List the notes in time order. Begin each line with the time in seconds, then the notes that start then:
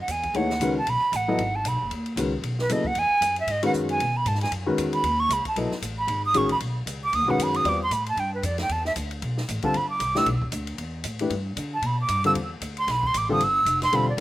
0.01 F#5
0.08 E2 G#5, hi-hat pedal, ride
0.23 kick, ride
0.34 D#2 E3 A3 D#4 G#4 C#5 F#5, ride
0.50 snare
0.60 C#2 D#3 G#3 C#4 F#4 B4, hi-hat pedal, ride
0.78 A5
0.86 B1 B5, ride
1.01 muted upright bass stroke
1.12 A1 F#5, hi-hat pedal, ride
1.28 F#3 B3 E4 A4 D#5
1.38 G#1, ride
1.56 A5
1.64 B1 B5, hi-hat pedal, ride
1.73 G#1
1.82 F#1
1.90 D#2, ride
2.06 ride
2.16 C#2 D#3 G#3 C#4 F#4 B4, hi-hat pedal, ride
2.42 B1, ride
2.59 B4, snare
2.69 D#2 C#3 F#3 B3 E4 A4 D#5, hi-hat pedal, ride
2.84 F#5, kick
2.95 E2 G#5, ride
3.10 muted upright bass stroke
3.21 F#2, hi-hat pedal, ride
3.36 ride
3.40 E5
3.47 G#2, ride
3.51 D#5
3.63 D#3 G#3 C#4 F#4 B4 F#5, ride
3.73 F#2, hi-hat pedal
3.89 G#5, ride
4.00 B2, ride
4.17 B5
4.25 G#2 A5, hi-hat pedal, ride
4.35 snare
4.41 G#5, snare, ride
4.51 F#2, ride
4.66 D#3 G#3 C#4 F#4 B4
4.78 E2, hi-hat pedal, ride
4.93 B5, ride
5.03 D#2, ride
5.20 C#6
5.29 C#2, hi-hat pedal, ride
5.33 B5
5.45 A5, muted upright bass stroke, kick, ride
5.56 B1 F#3 B3 E4 A4 D#5, ride
5.71 snare
5.82 A1, hi-hat pedal, ride
5.99 B5
6.07 G#1, ride
6.26 D#6
6.34 A1 D#3 G#3 C#4 F#4 G#4 C#6, hi-hat pedal, ride
6.49 B5, ride
6.60 B1, ride
6.86 C#2, hi-hat pedal, ride
7.04 D6
7.13 D#2 D#6, ride
7.22 B1
7.28 F#1 D#3 G#3 C#4 F#4 B4 F#5
7.38 F#2, hi-hat pedal, ride
7.43 B5
7.54 D#6, ride
7.64 E2 G3 C4 F4 B4 D5, ride
7.69 D6
7.83 C6
7.90 A2 B5, hi-hat pedal, ride
8.06 A5, ride
8.16 G2 G5, ride
8.35 B4
8.42 F2 D5, hi-hat pedal, ride
8.58 G5, snare, ride
8.69 E2 A5, ride
8.85 E5, snare
8.96 D2, hi-hat pedal, ride
9.11 ride
9.22 B1, ride
9.38 snare
9.48 A1, hi-hat pedal, ride
9.62 D3 G3 C4 F4 A4 A5, muted upright bass stroke, kick, ride
9.74 G1 B5, ride
9.90 D6
10.00 C2, hi-hat pedal, ride
10.15 E3 A3 D4 G4 B4 E6, snare
10.26 B1, ride
10.34 G1
10.42 E1, kick
10.52 D2, hi-hat pedal, ride
10.67 ride
10.78 E2, ride
11.04 A2, hi-hat pedal, ride
11.19 E3 A3 D4 G4 B4, ride
11.30 G2, ride
11.56 D3, hi-hat pedal, ride
11.74 A5
11.82 B2, ride
11.86 B5
12.01 D6
12.08 G2, hi-hat pedal, ride
12.24 D3 G3 C4 F4 A4 E6, ride
12.34 E2, ride
12.61 D2, hi-hat pedal, ride
12.77 C6, ride
12.87 B1 B5, snare, ride
13.03 C6, kick
13.14 A1 D6, hi-hat pedal, ride
13.29 D3 G3 C4 F4 A4 D#6
13.40 G1 E6, ride
13.65 F1, hi-hat pedal, ride
13.82 C6, snare, ride
13.92 E1 D3 G3 C4 F4 A4 B5, ride
14.10 D5
14.17 G1